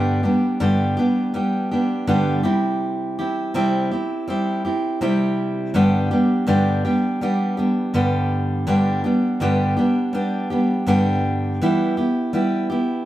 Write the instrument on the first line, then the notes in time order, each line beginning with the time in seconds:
steel-string acoustic guitar
Already playing: G2 D3 G3 B3 D4 G4
0.23 G3 B3 D4 G4
0.60 G2 D3 G3 B3 D4 G4
0.97 G3 B3 D4 G4
1.34 G3 B3 D4 G4
1.71 G3 B3 D4 G4
2.07 G2 D3 G3 B3 D4 G4
2.43 C3 G3 C4 E4 G4
3.19 C4 E4 G4
3.54 C3 G3 C4 E4 G4
3.92 C4 E4 G4
4.28 G3 C4 E4 G4
4.65 C4 E4 G4
5.01 C3 G3 C4 E4 G4
5.74 G2 D3 G3 B3 D4 G4
6.11 G3 B3 D4 G4
6.47 G2 D3 G3 B3 D4 G4
6.85 G3 B3 D4 G4
7.21 G3 B3 D4 G4
7.57 G3 B3 D4 G4
7.94 G2 D3 G3 B3 D4 G4
8.67 G2 D3 G3 B3 D4 G4
9.04 G3 B3 D4 G4
9.40 G2 D3 G3 B3 D4 G4
9.77 G3 B3 D4 G4
10.13 G3 B3 D4 G4
10.50 G3 B3 D4 G4
10.87 G2 D3 G3 B3 D4 G4
11.62 E3 G3 B3 E4 G4
11.97 B3 E4 G4
12.33 G3 B3 E4 G4
12.70 B3 E4 G4